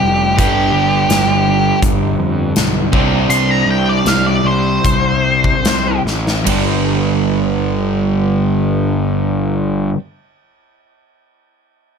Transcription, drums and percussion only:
0.39 kick loud
0.39 closed hi-hat medium
1.10 snare medium
1.10 closed hi-hat medium
1.83 kick loud
1.83 closed hi-hat medium
2.56 snare loud
2.56 closed hi-hat medium
2.93 kick medium
3.30 closed hi-hat soft
4.06 snare medium
4.06 closed hi-hat soft
4.85 kick medium
4.85 closed hi-hat soft
5.44 kick medium
5.65 snare loud
5.65 closed hi-hat medium
6.07 snare soft
6.27 snare medium
6.47 kick medium
6.47 ride medium

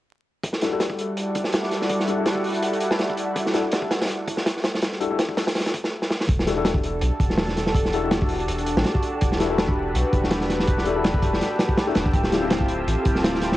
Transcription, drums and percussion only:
0.43 kick loud
0.43 closed hi-hat medium
0.53 snare soft
0.61 snare soft
0.61 closed hi-hat medium
0.80 snare medium
0.80 closed hi-hat medium
0.90 kick medium
0.99 closed hi-hat medium
1.17 closed hi-hat medium
1.35 kick medium
1.35 closed hi-hat medium
1.44 snare soft
1.53 snare loud
1.53 closed hi-hat medium
1.63 snare soft
1.71 snare soft
1.71 closed hi-hat medium
1.82 snare soft
1.89 kick medium
1.89 closed hi-hat medium
2.00 snare soft
2.08 closed hi-hat medium
2.26 snare medium
2.26 closed hi-hat medium
2.35 kick medium
2.44 open hi-hat medium
2.54 closed hi-hat soft
2.62 closed hi-hat medium
2.73 closed hi-hat soft
2.80 closed hi-hat medium
2.91 snare loud
2.99 snare medium
2.99 closed hi-hat medium
3.10 kick medium
3.17 closed hi-hat medium
3.36 kick loud
3.36 closed hi-hat medium
3.46 snare soft
3.54 snare soft
3.54 closed hi-hat medium
3.71 snare loud
3.71 closed hi-hat medium
3.82 kick medium
3.91 snare loud
3.91 closed hi-hat medium
4.01 snare medium
4.01 closed hi-hat medium
4.05 snare medium
4.05 closed hi-hat medium
4.09 closed hi-hat medium
4.27 kick medium
4.27 closed hi-hat medium
4.37 snare soft
4.46 snare loud
4.46 closed hi-hat medium
4.57 snare soft
4.64 snare medium
4.64 closed hi-hat medium
4.75 snare medium
4.82 snare loud
4.82 closed hi-hat medium
4.92 snare soft
5.01 closed hi-hat medium
5.19 snare loud
5.19 closed hi-hat medium
5.29 kick medium
5.37 snare medium
5.37 closed hi-hat medium
5.47 snare loud
5.47 closed hi-hat medium
5.55 snare medium
5.55 closed hi-hat medium
5.60 snare medium
5.60 closed hi-hat medium
5.66 snare medium
5.66 closed hi-hat medium
5.74 kick medium
5.74 closed hi-hat medium
5.84 snare medium
6.02 snare soft
6.10 snare medium
6.20 snare medium
6.29 kick loud
6.29 closed hi-hat medium
6.39 snare medium
6.47 snare soft
6.47 closed hi-hat medium
6.65 snare loud
6.65 closed hi-hat medium
6.75 kick medium
6.84 closed hi-hat medium
7.02 closed hi-hat medium
7.20 kick medium
7.20 closed hi-hat medium
7.30 snare soft
7.38 snare loud
7.38 closed hi-hat medium
7.48 snare soft
7.57 snare soft
7.57 closed hi-hat medium
7.66 snare soft
7.75 kick loud
7.75 closed hi-hat medium
7.85 snare soft
7.93 closed hi-hat medium
8.11 snare loud
8.11 closed hi-hat medium
8.22 kick medium
8.29 open hi-hat medium
8.40 closed hi-hat soft
8.48 closed hi-hat medium
8.58 closed hi-hat soft
8.67 closed hi-hat medium
8.77 snare loud
8.84 snare loud
8.84 closed hi-hat medium
8.95 kick medium
9.03 closed hi-hat medium
9.21 kick loud
9.21 closed hi-hat medium
9.32 snare medium
9.40 snare medium
9.40 closed hi-hat medium
9.58 snare loud
9.58 closed hi-hat medium
9.68 kick medium
9.95 closed hi-hat medium
10.13 kick medium
10.13 closed hi-hat medium
10.24 snare soft
10.31 snare loud
10.31 closed hi-hat medium
10.41 snare medium
10.50 snare soft
10.50 closed hi-hat medium
10.60 snare medium
10.67 kick loud
10.67 closed hi-hat medium
10.78 snare soft
10.85 closed hi-hat medium
11.04 snare loud
11.04 closed hi-hat medium
11.14 kick medium
11.22 kick medium
11.22 closed hi-hat medium
11.33 snare soft
11.41 snare soft
11.41 closed hi-hat medium
11.59 snare medium
11.59 closed hi-hat medium
11.69 kick medium
11.77 snare loud
11.77 closed hi-hat medium
11.95 snare loud
11.95 closed hi-hat medium
12.06 kick medium
12.14 kick loud
12.14 closed hi-hat medium
12.24 snare medium
12.32 snare medium
12.32 closed hi-hat medium
12.50 snare loud
12.50 closed hi-hat medium
12.61 kick medium
12.68 closed hi-hat medium
12.88 closed hi-hat medium
13.05 kick medium
13.05 closed hi-hat medium
13.15 snare medium
13.24 snare loud
13.24 closed hi-hat medium
13.34 snare soft
13.41 snare soft
13.41 closed hi-hat medium
13.52 snare soft

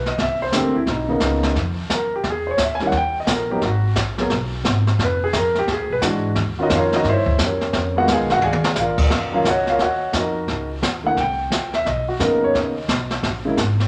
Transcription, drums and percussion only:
0.06 snare soft
0.18 brush sweep soft
0.18 kick soft
0.18 snare soft
0.52 kick soft
0.52 snare medium
0.52 hi-hat pedal medium
0.86 brush sweep soft
0.86 kick soft
0.86 snare soft
1.20 kick soft
1.20 snare medium
1.20 hi-hat pedal soft
1.43 snare soft
1.55 brush sweep soft
1.55 kick soft
1.55 snare soft
1.89 kick soft
1.89 snare medium
1.89 hi-hat pedal medium
2.24 brush sweep soft
2.24 kick soft
2.24 snare soft
2.58 kick soft
2.58 snare medium
2.58 hi-hat pedal medium
2.80 snare soft
2.92 brush sweep soft
2.92 kick soft
2.92 snare soft
3.27 kick soft
3.27 snare medium
3.27 hi-hat pedal medium
3.61 brush sweep soft
3.61 kick soft
3.61 snare soft
3.96 kick soft
3.96 snare medium
3.96 hi-hat pedal soft
4.18 snare soft
4.30 brush sweep medium
4.30 kick soft
4.30 snare soft
4.65 kick soft
4.65 snare medium
4.65 hi-hat pedal soft
4.87 snare soft
4.99 brush sweep soft
4.99 kick soft
4.99 snare soft
5.33 kick soft
5.33 snare medium
5.33 hi-hat pedal soft
5.55 snare soft
5.67 brush sweep soft
5.67 kick soft
5.67 snare soft
6.02 kick soft
6.02 snare medium
6.02 hi-hat pedal medium
6.35 brush sweep medium
6.35 kick soft
6.35 snare soft
6.70 kick soft
6.70 snare medium
6.70 hi-hat pedal medium
6.92 snare soft
7.04 brush sweep soft
7.04 kick soft
7.04 snare soft
7.26 kick medium
7.39 snare medium
7.39 hi-hat pedal medium
7.61 snare soft
7.73 brush sweep soft
7.73 kick soft
7.73 snare soft
8.07 kick soft
8.07 snare medium
8.07 hi-hat pedal medium
8.30 snare soft
8.41 high tom soft
8.53 high tom medium
8.64 snare medium
8.76 snare medium
8.76 hi-hat pedal medium
8.98 kick medium
8.98 crash medium
9.10 brush sweep soft
9.10 kick soft
9.10 snare soft
9.45 kick soft
9.45 snare medium
9.45 hi-hat pedal soft
9.67 snare soft
9.79 brush sweep soft
9.79 kick soft
9.79 snare soft
10.13 kick soft
10.13 snare medium
10.13 hi-hat pedal soft
10.48 brush sweep soft
10.48 kick soft
10.48 snare soft
10.82 kick soft
10.82 snare medium
10.82 hi-hat pedal medium
11.17 brush sweep soft
11.17 kick soft
11.17 snare soft
11.51 kick soft
11.51 snare medium
11.51 hi-hat pedal medium
11.73 snare soft
11.85 brush sweep soft
11.85 kick soft
11.85 snare soft
12.20 kick soft
12.20 snare medium
12.20 hi-hat pedal soft
12.54 brush sweep medium
12.54 kick soft
12.54 snare soft
12.88 kick soft
12.88 snare medium
12.88 hi-hat pedal medium
13.10 snare soft
13.23 brush sweep medium
13.23 kick soft
13.23 snare soft
13.57 kick soft
13.57 snare medium
13.57 hi-hat pedal medium
13.80 snare soft

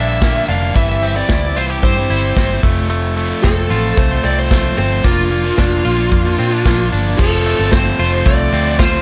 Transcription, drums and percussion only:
0.21 kick loud
0.21 snare loud
0.21 closed hi-hat medium
0.49 open hi-hat medium
0.75 kick loud
0.75 closed hi-hat medium
1.03 open hi-hat medium
1.29 kick loud
1.29 snare loud
1.57 open hi-hat medium
1.83 kick loud
1.83 closed hi-hat medium
2.10 open hi-hat medium
2.36 kick loud
2.36 snare loud
2.36 closed hi-hat medium
2.63 kick loud
2.63 open hi-hat medium
2.90 closed hi-hat medium
3.17 open hi-hat medium
3.44 kick loud
3.44 snare loud
3.44 closed hi-hat medium
3.71 open hi-hat medium
3.97 kick loud
3.97 closed hi-hat medium
4.24 open hi-hat medium
4.51 kick loud
4.51 snare loud
4.51 closed hi-hat medium
4.78 open hi-hat medium
5.04 kick loud
5.04 closed hi-hat medium
5.32 open hi-hat medium
5.58 kick loud
5.58 snare loud
5.58 closed hi-hat medium
5.85 open hi-hat medium
6.11 kick loud
6.11 closed hi-hat medium
6.39 open hi-hat medium
6.65 kick loud
6.65 snare loud
6.65 closed hi-hat medium
6.92 open hi-hat medium
7.19 kick loud
7.19 crash loud
7.46 open hi-hat medium
7.72 kick loud
7.72 snare loud
7.72 ride medium
7.99 open hi-hat medium
8.26 kick loud
8.26 hi-hat pedal medium
8.26 ride medium
8.53 open hi-hat medium
8.79 kick loud
8.79 snare loud
8.79 hi-hat pedal medium
8.79 ride medium

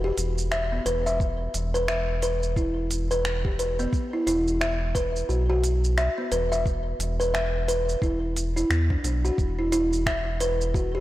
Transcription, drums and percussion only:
0.18 open hi-hat medium
0.18 shaker medium
0.38 shaker soft
0.52 finger snap medium
0.52 shaker soft
0.86 open hi-hat medium
0.86 shaker medium
1.07 shaker soft
1.20 kick loud
1.20 shaker soft
1.54 open hi-hat medium
1.54 shaker medium
1.75 shaker soft
1.88 finger snap medium
1.88 shaker soft
2.22 open hi-hat medium
2.22 shaker medium
2.43 shaker soft
2.56 kick loud
2.56 shaker soft
2.91 open hi-hat medium
2.91 shaker medium
3.11 shaker soft
3.25 finger snap medium
3.25 shaker soft
3.45 kick loud
3.59 open hi-hat medium
3.59 shaker medium
3.79 shaker soft
3.93 kick loud
3.93 shaker soft
4.27 open hi-hat medium
4.27 shaker medium
4.48 shaker soft
4.61 finger snap medium
4.61 shaker soft
4.95 kick loud
4.95 open hi-hat medium
4.95 shaker medium
5.16 shaker soft
5.30 shaker soft
5.64 open hi-hat medium
5.64 shaker medium
5.84 shaker soft
5.98 finger snap medium
5.98 shaker soft
6.32 open hi-hat medium
6.32 shaker medium
6.53 shaker soft
6.66 kick loud
6.66 shaker soft
7.00 open hi-hat medium
7.00 shaker medium
7.21 shaker soft
7.35 finger snap loud
7.35 shaker soft
7.69 open hi-hat medium
7.69 shaker medium
7.89 shaker soft
8.02 kick loud
8.02 shaker soft
8.37 open hi-hat medium
8.37 shaker medium
8.57 shaker soft
8.71 finger snap medium
8.71 shaker soft
8.90 kick loud
9.04 open hi-hat medium
9.04 shaker medium
9.25 shaker soft
9.38 kick loud
9.38 shaker soft
9.72 open hi-hat medium
9.72 shaker medium
9.93 shaker soft
10.06 finger snap loud
10.06 kick loud
10.06 shaker soft
10.40 open hi-hat medium
10.40 shaker medium
10.61 shaker soft
10.74 kick loud
10.74 shaker soft

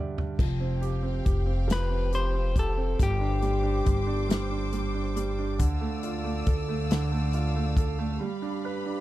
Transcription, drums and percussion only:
0.18 floor tom medium
0.39 kick medium
0.39 crash medium
0.83 closed hi-hat soft
1.26 kick medium
1.26 closed hi-hat soft
1.70 snare loud
1.70 closed hi-hat medium
2.13 closed hi-hat soft
2.56 kick medium
2.56 closed hi-hat soft
2.99 kick medium
2.99 closed hi-hat medium
3.42 closed hi-hat soft
3.86 kick medium
3.86 closed hi-hat soft
4.30 snare loud
4.30 closed hi-hat medium
4.73 closed hi-hat soft
5.17 closed hi-hat soft
5.59 kick medium
5.59 closed hi-hat medium
6.03 closed hi-hat medium
6.46 kick medium
6.46 closed hi-hat soft
6.91 snare loud
6.91 closed hi-hat medium
7.33 closed hi-hat soft
7.77 kick medium
7.77 closed hi-hat soft

